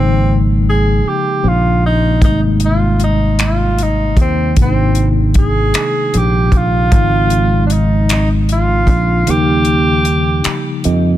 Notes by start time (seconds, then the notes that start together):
Already playing: G#1 C#3 F3 G#3 A#3 C4 D#4
0.69 G#4
1.05 G4, muted fretless electric bass stroke
1.44 A#1 F4
1.86 D#4
2.20 G#1 C3 G3 G#3, kick, closed hi-hat
2.25 A#3 D#4
2.60 closed hi-hat
2.66 F4
3.00 closed hi-hat
3.04 D#4
3.39 F4, finger snap, closed hi-hat
3.79 D#4, closed hi-hat
4.17 D#2, kick, closed hi-hat
4.21 C4
4.55 G#1 C3 D#3 G#3, kick, closed hi-hat
4.60 A#3 C4 D4
4.68 D#4
4.95 closed hi-hat
5.34 kick, closed hi-hat
5.39 G#4
5.74 finger snap, muted fretless electric bass stroke, closed hi-hat
6.14 A#1, closed hi-hat
6.18 G4
6.52 kick, closed hi-hat
6.57 F4
6.91 G#1 C#3 F3 G#3, kick, closed hi-hat
6.95 C4 D#4
7.30 closed hi-hat
7.67 D4, closed hi-hat
7.73 D#4
8.09 D#4, finger snap, closed hi-hat
8.49 F4, closed hi-hat
8.87 A#1, kick, closed hi-hat
9.25 D#2 C#3 F3 F#3, closed hi-hat
9.30 A#3 D#4 G4
9.35 G3
9.65 closed hi-hat
10.05 closed hi-hat
10.44 finger snap, muted fretless electric bass stroke, closed hi-hat
10.84 F2 D#5, closed hi-hat